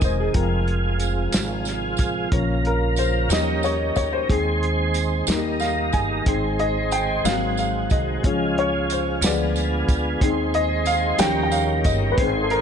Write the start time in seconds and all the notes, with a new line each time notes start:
Already playing: C3 D#3 G#3 C4 D#4 G4 G#4 A#4 C5 D#5
0.01 E1 C5, kick, closed hi-hat, tambourine
0.20 G#4
0.33 F1 F3 G#3 C4 F4 A#4, kick, closed hi-hat
0.68 closed hi-hat
1.00 closed hi-hat, tambourine
1.32 G#1, snare, closed hi-hat, tambourine
1.65 snare, closed hi-hat, tambourine
1.97 A1, kick, closed hi-hat, tambourine
2.32 A#1 C#3 F3 A#3 C#4 F4 A#4, kick, closed hi-hat
2.65 A#4, closed hi-hat
2.96 C5, closed hi-hat, tambourine
3.29 D#2 F3 G3 C#4 D#4 G4 D#5, snare, closed hi-hat, tambourine
3.63 C#5, closed hi-hat, tambourine
3.96 D2 C#5, kick, closed hi-hat, tambourine
4.13 C5
4.29 D#2 D#3 G#3 C4 G#4 C5, kick, closed hi-hat
4.63 closed hi-hat
4.94 closed hi-hat, tambourine
5.27 D#2 D#3 G3 A#3 D#4 A#4, snare, closed hi-hat, tambourine
5.60 F5, snare, closed hi-hat, tambourine
5.93 G1 G#5, kick, closed hi-hat, tambourine
6.25 G#1 D#3 G#3 C4 G#4 C5, kick, closed hi-hat
6.59 D#5, closed hi-hat
6.91 G5, closed hi-hat, tambourine
7.25 G#1 F#3 A#3 C4 F#4 F5, snare, closed hi-hat, tambourine
7.57 F5, closed hi-hat, tambourine
7.90 C2 D#5, kick, closed hi-hat, tambourine
8.23 C#2 C#3 F3 G#3 C#4 F4 G#4, kick, closed hi-hat
8.58 C#5, closed hi-hat
8.90 C5, closed hi-hat, tambourine
9.21 D2 D3 F3 G#3 B3 F4 D5, snare, closed hi-hat, tambourine
9.56 closed hi-hat, tambourine
9.88 D2, kick, closed hi-hat, tambourine
10.20 D#2 D#3 G#3 C4 C5, kick, closed hi-hat
10.54 D#5, closed hi-hat
10.86 F5, closed hi-hat, tambourine
11.18 D#2 D#3 F3 G3 A#3 C#4 G4 A#4 G5, snare, closed hi-hat, tambourine
11.43 G5
11.51 F5, closed hi-hat, tambourine
11.84 G1 D#5, kick, closed hi-hat, tambourine
12.12 B4
12.17 G#1 D#3 G#3 C4 G#4 C5, kick, closed hi-hat
12.43 A4
12.50 A#4, closed hi-hat